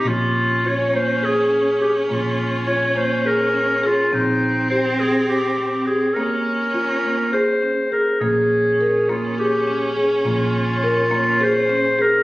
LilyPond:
<<
  \new Staff \with { instrumentName = "Clarinet" } { \time 7/8 \key bes \dorian \tempo 4 = 103 f'4 des''8 c''8 aes'4 g'8 | f'4 des''8 c''8 bes'4 f'8 | ees'4 c''8 aes'8 g'4 aes'8 | bes'2 c''4 bes'8 |
aes'4. f'8 g'4 r8 | f'2 c''4 bes'8 | }
  \new Staff \with { instrumentName = "Marimba" } { \time 7/8 \key bes \dorian bes4 f'8 bes8 aes'8 des'8 aes'8 | bes4 f'8 bes8 aes'8 des'8 aes'8 | c'4 g'8 c'8 g'8 c'8 g'8 | bes4 f'8 bes8 aes'8 des'8 aes'8 |
bes4 bes'8 bes8 aes'8 des'8 aes'8 | bes4 bes'8 bes8 aes'8 des'8 aes'8 | }
  \new Staff \with { instrumentName = "Cello" } { \time 7/8 \key bes \dorian des'2.~ des'8~ | des'2.~ des'8 | c'2.~ c'8 | des'2. r8 |
des'2.~ des'8~ | des'2.~ des'8 | }
  \new Staff \with { instrumentName = "Picked electric bass" } { \clef bass \time 7/8 \key bes \dorian bes,,2.~ bes,,8 | bes,,2.~ bes,,8 | bes,,2.~ bes,,8 | r2. r8 |
bes,,2.~ bes,,8 | bes,,2.~ bes,,8 | }
>>